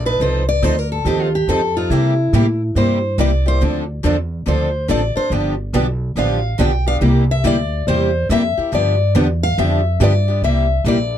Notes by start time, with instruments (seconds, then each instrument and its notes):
Already playing: upright bass A#1
0.05 steel-string acoustic guitar C4 D#4 A4 B4
0.20 upright bass C2, steel-string acoustic guitar F3 C4 D#4 A4 C5
0.49 steel-string acoustic guitar D5
0.62 upright bass D2, steel-string acoustic guitar F3 C4 D#4 A4 C5
0.79 steel-string acoustic guitar A#4
0.92 steel-string acoustic guitar A4
1.05 upright bass D#2, steel-string acoustic guitar F3 C4 D#4 G4 A4
1.22 steel-string acoustic guitar F4
1.35 steel-string acoustic guitar G4
1.48 upright bass F2, steel-string acoustic guitar F3 C4 D#4 A4
1.76 steel-string acoustic guitar C4 D#4 F4 A4
1.90 upright bass C3, steel-string acoustic guitar C3 G3 A#3 E4 G4
2.33 upright bass A2, steel-string acoustic guitar C3 G3 A#3 E4 G4
2.75 upright bass G2, steel-string acoustic guitar C3 G3 A#3 E4 G4 C5
3.18 upright bass C2, steel-string acoustic guitar C3 G3 A#3 E4 G4 D5
3.46 steel-string acoustic guitar A#3 E4 G4 C5
3.61 upright bass D2, steel-string acoustic guitar D3 F3 C4 D4 A4
4.03 upright bass E2, steel-string acoustic guitar D3 F3 C4 D4 A4
4.46 upright bass D2, steel-string acoustic guitar D3 F3 C4 D4 A4 C5
4.88 upright bass A1, steel-string acoustic guitar D3 F3 C4 D4 A4 D5
5.16 steel-string acoustic guitar C4 D4 A4 C5, muted upright bass stroke
5.30 upright bass G1, steel-string acoustic guitar D3 F3 B3 D4 G4
5.73 upright bass B1, steel-string acoustic guitar D3 F3 B3 D4 G4
6.16 upright bass A1, steel-string acoustic guitar D3 F3 B3 D4 G4 F5
6.59 upright bass B1, steel-string acoustic guitar D3 F3 B3 D4 G4 G5
6.86 steel-string acoustic guitar B3 D4 G4 F5
7.01 upright bass C2, steel-string acoustic guitar C3 G3 A#3 E4 G4
7.31 steel-string acoustic guitar E5
7.44 upright bass D2, steel-string acoustic guitar C3 G3 A#3 E4 G4 D5
7.87 upright bass E2, steel-string acoustic guitar C3 G3 A#3 E4 G4 C5
8.29 upright bass F2, steel-string acoustic guitar C3 G3 A#3 E4 G4 E5
8.58 steel-string acoustic guitar A#3 E4 G4, muted upright bass stroke
8.72 upright bass G2, steel-string acoustic guitar D3 F3 B3 D4 G4 D5
9.15 upright bass E2, steel-string acoustic guitar D3 F3 B3 D4 G4
9.43 steel-string acoustic guitar F5
9.58 upright bass F2, steel-string acoustic guitar D3 F3 B3 D4 G4 E5
10.00 upright bass G2, steel-string acoustic guitar D3 F3 B3 D4 G4 D5
10.28 steel-string acoustic guitar B3 D4 G4
10.42 upright bass C2, steel-string acoustic guitar C3 G3 A#3 E4 G4 E5
10.84 upright bass A#1, steel-string acoustic guitar C3 G3 A#3 E4 G4 D5